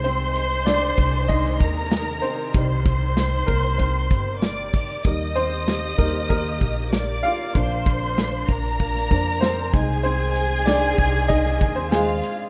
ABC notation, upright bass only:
X:1
M:4/4
L:1/8
Q:1/4=96
K:Ablyd
V:1 name="Upright bass" clef=bass
C,,3 C,,2 E,,2 z | C,,3 C,,2 G,,,2 z | E,,3 E,,2 B,,,2 z | B,,,3 B,,,2 F,,2 C,,- |
C,,3 C,,2 E,,2 z |]